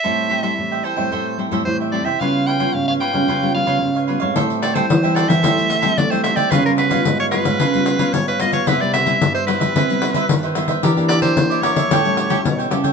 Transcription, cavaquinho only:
X:1
M:4/4
L:1/16
Q:1/4=111
K:Am
V:1 name="Cavaquinho"
[Aceg]2 [Aceg] [Aceg] z [ceg] [Aceg] [ceg] [Aceg]2 [Aceg] [Aceg] z [ceg] [Aceg] [ceg] | [^EB^c^e]2 [EBce] [EBce] z [Bce] [EBce] [Bce] [EBce]2 [EBce] [EBce] z [Bce] [EBce] [Bce] | [Aceg]2 [Aceg] [Aceg] z [ceg] [Aceg] [ceg] [Aceg]2 [Aceg] [Aceg] z [ceg] [Aceg] [ceg] | [^EB^c^e]2 [EBce] [EBce] z [Bce] [EBce] [Bce] [EBce]2 [EBce] [EBce] z [Bce] [EBce] [Bce] |
[EBce]2 [EBce] [EBce] z [Bce] [EBce] [Bce] [EBce]2 [EBce] [EBce] z [Bce] [EBce] [Bce] | [G_Bde]2 [GBde] [GBde] z [Bde] [GBde] [Bde] [GA^cg]2 [GAcg] [GAcg] z [Acg] [GAcg] [Acg] |]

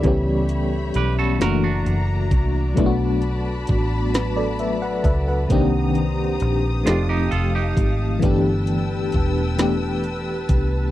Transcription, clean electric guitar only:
X:1
M:6/8
L:1/16
Q:3/8=44
K:Bphr
V:1 name="Clean electric guitar"
z4 [GB] [FA] [F^A] [DF]4- [DF] | z12 | z6 [D=F] [_EG] [FA] [EG]3 | z12 |]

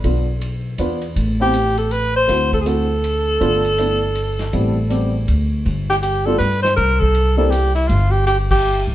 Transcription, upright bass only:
X:1
M:3/4
L:1/8
Q:"Swing" 1/4=160
K:Gmix
V:1 name="Upright bass" clef=bass
B,,,4 E,,2 | A,,,6 | D,,6 | G,,,6 |
A,,,4 D,,2 | G,,,4 G,,2 | C,,6 | G,,,4- G,,, C,, |]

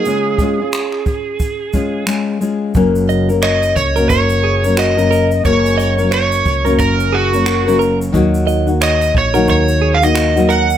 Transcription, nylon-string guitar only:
X:1
M:4/4
L:1/16
Q:"Swing 16ths" 1/4=89
K:F#
V:1 name="Nylon-string guitar"
[C,G,CEG]2 [G,CEG] [CEG]6- [CEG] [G,CEG]2 [G,CEG]2 [G,CEG]2 | [F,,C,F,A,CA]3 [F,A,CA]4 [F,,C,F,A,CA]4 [F,A,CA]2 [F,,C,F,A,CA]3 | [F,,C,F,A,CA]3 [F,A,CA]4 [F,,C,F,A,CA]4 [F,A,CA]2 [F,,C,F,A,CA]3 | [D,F,A,DF]3 [A,DF]4 [D,F,A,DF]4 [A,DF]2 [D,F,A,DF]3 |]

